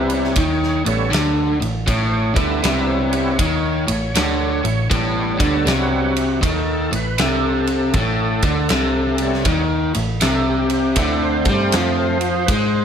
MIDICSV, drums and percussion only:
0, 0, Header, 1, 2, 480
1, 0, Start_track
1, 0, Tempo, 756620
1, 1199, Time_signature, 4, 2, 24, 8
1, 8150, End_track
2, 0, Start_track
2, 0, Title_t, "Drums"
2, 61, Note_on_c, 9, 51, 67
2, 124, Note_off_c, 9, 51, 0
2, 154, Note_on_c, 9, 38, 25
2, 218, Note_off_c, 9, 38, 0
2, 226, Note_on_c, 9, 51, 81
2, 231, Note_on_c, 9, 36, 98
2, 289, Note_off_c, 9, 51, 0
2, 294, Note_off_c, 9, 36, 0
2, 402, Note_on_c, 9, 38, 32
2, 465, Note_off_c, 9, 38, 0
2, 546, Note_on_c, 9, 51, 72
2, 610, Note_off_c, 9, 51, 0
2, 717, Note_on_c, 9, 51, 81
2, 726, Note_on_c, 9, 38, 113
2, 780, Note_off_c, 9, 51, 0
2, 790, Note_off_c, 9, 38, 0
2, 1027, Note_on_c, 9, 51, 58
2, 1091, Note_off_c, 9, 51, 0
2, 1190, Note_on_c, 9, 36, 89
2, 1191, Note_on_c, 9, 51, 81
2, 1254, Note_off_c, 9, 36, 0
2, 1254, Note_off_c, 9, 51, 0
2, 1500, Note_on_c, 9, 36, 109
2, 1500, Note_on_c, 9, 51, 66
2, 1563, Note_off_c, 9, 36, 0
2, 1564, Note_off_c, 9, 51, 0
2, 1672, Note_on_c, 9, 51, 92
2, 1681, Note_on_c, 9, 38, 110
2, 1735, Note_off_c, 9, 51, 0
2, 1745, Note_off_c, 9, 38, 0
2, 1983, Note_on_c, 9, 51, 73
2, 2047, Note_off_c, 9, 51, 0
2, 2150, Note_on_c, 9, 36, 99
2, 2151, Note_on_c, 9, 51, 101
2, 2214, Note_off_c, 9, 36, 0
2, 2214, Note_off_c, 9, 51, 0
2, 2462, Note_on_c, 9, 51, 78
2, 2525, Note_off_c, 9, 51, 0
2, 2634, Note_on_c, 9, 51, 92
2, 2644, Note_on_c, 9, 38, 116
2, 2698, Note_off_c, 9, 51, 0
2, 2707, Note_off_c, 9, 38, 0
2, 2948, Note_on_c, 9, 51, 62
2, 3011, Note_off_c, 9, 51, 0
2, 3115, Note_on_c, 9, 36, 97
2, 3115, Note_on_c, 9, 51, 77
2, 3179, Note_off_c, 9, 36, 0
2, 3179, Note_off_c, 9, 51, 0
2, 3426, Note_on_c, 9, 36, 110
2, 3428, Note_on_c, 9, 51, 75
2, 3489, Note_off_c, 9, 36, 0
2, 3491, Note_off_c, 9, 51, 0
2, 3596, Note_on_c, 9, 51, 81
2, 3605, Note_on_c, 9, 38, 110
2, 3659, Note_off_c, 9, 51, 0
2, 3669, Note_off_c, 9, 38, 0
2, 3911, Note_on_c, 9, 51, 69
2, 3974, Note_off_c, 9, 51, 0
2, 4079, Note_on_c, 9, 36, 104
2, 4080, Note_on_c, 9, 51, 91
2, 4142, Note_off_c, 9, 36, 0
2, 4144, Note_off_c, 9, 51, 0
2, 4394, Note_on_c, 9, 51, 68
2, 4457, Note_off_c, 9, 51, 0
2, 4555, Note_on_c, 9, 51, 93
2, 4565, Note_on_c, 9, 38, 105
2, 4619, Note_off_c, 9, 51, 0
2, 4628, Note_off_c, 9, 38, 0
2, 4868, Note_on_c, 9, 51, 59
2, 4931, Note_off_c, 9, 51, 0
2, 5034, Note_on_c, 9, 51, 72
2, 5038, Note_on_c, 9, 36, 93
2, 5097, Note_off_c, 9, 51, 0
2, 5102, Note_off_c, 9, 36, 0
2, 5344, Note_on_c, 9, 51, 69
2, 5348, Note_on_c, 9, 36, 101
2, 5407, Note_off_c, 9, 51, 0
2, 5411, Note_off_c, 9, 36, 0
2, 5512, Note_on_c, 9, 51, 85
2, 5521, Note_on_c, 9, 38, 108
2, 5575, Note_off_c, 9, 51, 0
2, 5585, Note_off_c, 9, 38, 0
2, 5824, Note_on_c, 9, 51, 66
2, 5887, Note_off_c, 9, 51, 0
2, 5925, Note_on_c, 9, 38, 28
2, 5988, Note_off_c, 9, 38, 0
2, 5994, Note_on_c, 9, 51, 85
2, 5999, Note_on_c, 9, 36, 101
2, 6058, Note_off_c, 9, 51, 0
2, 6062, Note_off_c, 9, 36, 0
2, 6309, Note_on_c, 9, 51, 75
2, 6372, Note_off_c, 9, 51, 0
2, 6475, Note_on_c, 9, 51, 94
2, 6484, Note_on_c, 9, 38, 101
2, 6538, Note_off_c, 9, 51, 0
2, 6548, Note_off_c, 9, 38, 0
2, 6785, Note_on_c, 9, 51, 65
2, 6849, Note_off_c, 9, 51, 0
2, 6950, Note_on_c, 9, 51, 94
2, 6957, Note_on_c, 9, 36, 93
2, 7014, Note_off_c, 9, 51, 0
2, 7020, Note_off_c, 9, 36, 0
2, 7264, Note_on_c, 9, 51, 71
2, 7268, Note_on_c, 9, 36, 97
2, 7328, Note_off_c, 9, 51, 0
2, 7332, Note_off_c, 9, 36, 0
2, 7436, Note_on_c, 9, 51, 97
2, 7446, Note_on_c, 9, 38, 116
2, 7500, Note_off_c, 9, 51, 0
2, 7509, Note_off_c, 9, 38, 0
2, 7744, Note_on_c, 9, 51, 66
2, 7807, Note_off_c, 9, 51, 0
2, 7918, Note_on_c, 9, 51, 92
2, 7920, Note_on_c, 9, 36, 103
2, 7981, Note_off_c, 9, 51, 0
2, 7983, Note_off_c, 9, 36, 0
2, 8150, End_track
0, 0, End_of_file